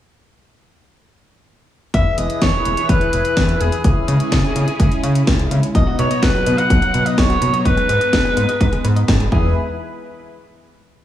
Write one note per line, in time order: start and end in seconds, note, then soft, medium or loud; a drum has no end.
1.94 2.04 E2 loud
1.94 3.82 E3 medium
1.94 3.82 E4 medium
1.94 3.82 G#4 medium
1.94 3.82 B4 medium
1.94 2.19 E5 loud
1.94 kick loud
1.94 closed hi-hat medium
2.18 2.27 E1 medium
2.18 2.43 D#5 loud
2.18 closed hi-hat medium
2.30 closed hi-hat medium
2.42 2.51 E2 medium
2.42 2.91 C#5 loud
2.42 kick loud
2.42 snare loud
2.42 closed hi-hat medium
2.65 2.75 E1 medium
2.65 closed hi-hat medium
2.77 closed hi-hat medium
2.89 2.99 E2 loud
2.89 3.62 B4 loud
2.89 kick loud
2.89 closed hi-hat medium
3.01 closed hi-hat soft
3.13 3.23 E1 medium
3.13 closed hi-hat medium
3.25 closed hi-hat medium
3.37 3.56 E2 medium
3.37 kick loud
3.37 snare loud
3.37 closed hi-hat medium
3.49 closed hi-hat soft
3.60 3.70 E1 medium
3.60 3.84 G#4 medium
3.60 closed hi-hat medium
3.72 closed hi-hat medium
3.84 3.94 C#2 medium
3.84 5.73 G#3 medium
3.84 5.73 C#4 medium
3.84 5.73 E4 medium
3.84 5.47 G#4 medium
3.84 kick loud
3.84 closed hi-hat medium
4.08 4.18 C#3 loud
4.08 closed hi-hat medium
4.20 closed hi-hat medium
4.32 4.42 C#2 medium
4.32 kick loud
4.32 snare loud
4.32 closed hi-hat medium
4.56 4.66 C#3 medium
4.56 closed hi-hat medium
4.68 closed hi-hat medium
4.79 4.89 C#2 medium
4.79 kick loud
4.79 closed hi-hat medium
4.92 closed hi-hat soft
5.03 5.23 C#3 medium
5.03 closed hi-hat medium
5.15 closed hi-hat medium
5.27 5.47 C#2 loud
5.27 kick loud
5.27 snare loud
5.27 closed hi-hat medium
5.39 closed hi-hat soft
5.51 5.61 C#3 medium
5.51 closed hi-hat medium
5.63 closed hi-hat medium
5.75 5.85 B1 loud
5.75 7.63 F#3 medium
5.75 9.28 B3 medium
5.75 5.86 D#4 medium
5.75 9.29 D#4 medium
5.75 6.00 D#5 loud
5.75 kick loud
5.75 closed hi-hat medium
5.87 5.97 F#4 medium
5.99 6.08 B2 medium
5.99 6.09 B4 medium
5.99 6.24 C#5 loud
5.99 closed hi-hat medium
6.11 6.21 D#5 medium
6.11 closed hi-hat medium
6.22 6.32 B1 medium
6.22 6.34 D#4 medium
6.22 6.60 B4 loud
6.22 kick loud
6.22 snare loud
6.22 closed hi-hat medium
6.34 6.45 F#4 medium
6.46 6.56 B2 medium
6.46 6.57 B4 medium
6.46 closed hi-hat medium
6.58 6.69 D#5 medium
6.58 7.08 F#5 loud
6.58 closed hi-hat medium
6.70 6.80 B1 loud
6.70 6.81 D#4 medium
6.70 kick loud
6.70 closed hi-hat medium
6.82 6.92 F#4 medium
6.82 closed hi-hat soft
6.94 7.04 B2 medium
6.94 7.04 B4 medium
6.94 closed hi-hat medium
7.06 7.16 D#5 medium
7.06 7.20 D#5 medium
7.06 closed hi-hat medium
7.18 7.37 B1 medium
7.18 7.29 D#4 medium
7.18 7.67 C#5 loud
7.18 kick loud
7.18 snare loud
7.18 closed hi-hat medium
7.30 7.40 F#4 medium
7.30 closed hi-hat soft
7.41 7.51 B2 medium
7.41 7.52 B4 medium
7.41 closed hi-hat medium
7.53 7.64 D#5 medium
7.53 closed hi-hat medium
7.65 7.75 G#1 medium
7.65 9.30 G#3 medium
7.65 7.77 D#4 medium
7.65 9.08 B4 loud
7.65 kick loud
7.65 closed hi-hat medium
7.77 7.88 G#4 medium
7.77 closed hi-hat soft
7.89 7.99 G#2 medium
7.89 8.00 B4 medium
7.89 closed hi-hat medium
8.01 8.11 D#5 medium
8.01 closed hi-hat soft
8.13 8.23 G#1 medium
8.13 8.24 D#4 medium
8.13 kick loud
8.13 snare loud
8.13 closed hi-hat medium
8.25 8.35 G#4 medium
8.37 8.46 G#2 medium
8.37 8.47 B4 medium
8.37 closed hi-hat medium
8.49 8.59 D#5 medium
8.49 closed hi-hat medium
8.60 8.70 G#1 medium
8.60 8.72 D#4 medium
8.60 kick loud
8.60 closed hi-hat medium
8.72 8.83 G#4 medium
8.72 closed hi-hat soft
8.84 9.04 G#2 loud
8.84 8.95 B4 medium
8.84 closed hi-hat medium
8.96 9.07 D#5 medium
8.96 closed hi-hat medium
9.08 9.28 G#1 loud
9.08 9.19 D#4 medium
9.08 kick loud
9.08 snare loud
9.08 closed hi-hat medium
9.20 9.30 G#4 medium
9.20 closed hi-hat soft
9.32 9.54 E2 loud
9.32 9.54 E3 medium
9.32 9.54 E4 medium
9.32 9.54 G#4 medium
9.32 9.54 B4 medium
9.32 kick loud